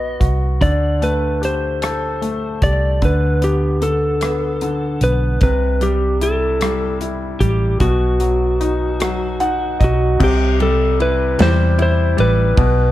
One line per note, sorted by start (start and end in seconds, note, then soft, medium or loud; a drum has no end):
0.00 0.17 B1 medium
0.00 0.64 B3 medium
0.00 0.20 F#4 soft
0.00 0.27 D#5 medium
0.20 0.62 C2 medium
0.20 0.60 F#4 soft
0.20 kick medium
0.20 closed hi-hat medium
0.61 2.59 D2 medium
0.61 2.99 D3 medium
0.61 1.03 D5 medium
0.61 kick medium
0.61 closed hi-hat medium
1.02 2.20 A3 soft
1.02 1.44 B4 medium
1.02 closed hi-hat soft
1.41 2.61 G4 soft
1.41 2.68 C5 medium
1.41 closed hi-hat medium
1.82 2.99 A4 soft
1.82 cross-stick medium
1.82 closed hi-hat medium
2.22 3.00 A3 soft
2.22 closed hi-hat soft
2.62 3.00 C2 medium
2.62 3.01 G4 soft
2.62 3.04 D5 medium
2.62 kick medium
2.62 closed hi-hat medium
3.02 4.98 D2 medium
3.02 3.80 D3 medium
3.02 3.45 B4 medium
3.02 kick medium
3.02 closed hi-hat medium
3.42 4.21 B3 soft
3.42 3.85 G4 medium
3.42 closed hi-hat soft
3.82 4.60 D3 soft
3.82 5.03 A4 medium
3.82 closed hi-hat soft
4.21 5.02 B3 soft
4.21 cross-stick medium
4.21 closed hi-hat medium
4.61 5.40 D3 soft
4.61 closed hi-hat soft
5.01 5.39 B1 medium
5.01 5.42 B3 soft
5.01 5.42 B4 medium
5.01 closed hi-hat medium
5.41 7.37 C2 medium
5.41 7.77 C3 medium
5.41 5.84 B4 medium
5.41 kick medium
5.41 closed hi-hat medium
5.81 6.59 G3 soft
5.81 6.23 G4 medium
5.81 closed hi-hat soft
6.21 7.00 E4 medium
6.21 6.98 A4 medium
6.21 closed hi-hat medium
6.60 7.39 G3 medium
6.60 cross-stick loud
6.60 closed hi-hat medium
7.01 7.78 E4 soft
7.01 closed hi-hat soft
7.40 7.78 A1 medium
7.40 7.79 G3 medium
7.40 7.78 G4 medium
7.40 kick medium
7.40 closed hi-hat medium
7.80 9.76 B1 loud
7.80 10.16 B2 medium
7.80 9.77 F#4 medium
7.80 kick medium
7.80 closed hi-hat medium
8.20 8.99 F#3 soft
8.20 closed hi-hat soft
8.61 9.39 D#4 medium
8.61 closed hi-hat medium
9.00 9.79 F#3 medium
9.00 cross-stick loud
9.00 closed hi-hat medium
9.40 10.18 D#4 soft
9.40 9.78 F#5 medium
9.40 closed hi-hat soft
9.80 10.18 B1 medium
9.80 10.19 F#3 soft
9.80 10.17 D#5 medium
9.80 kick medium
9.80 closed hi-hat medium
9.84 10.23 F#4 medium
10.20 11.35 C2 medium
10.20 12.53 C3 medium
10.20 kick loud
10.20 crash loud
10.24 10.62 G4 medium
10.60 11.37 G3 medium
10.60 11.01 A4 medium
10.60 ride soft
11.00 11.77 E4 medium
11.00 11.41 B4 medium
11.00 ride soft
11.39 12.14 E2 loud
11.39 12.15 G3 medium
11.39 11.81 C5 loud
11.39 snare loud
11.39 ride medium
11.78 12.55 E4 medium
11.78 12.17 C5 medium
11.78 ride soft
12.17 12.55 A1 medium
12.17 12.55 G3 medium
12.17 12.92 B4 loud
12.17 ride soft
12.57 12.92 B1 loud
12.57 12.92 B2 medium
12.57 kick loud
12.57 ride medium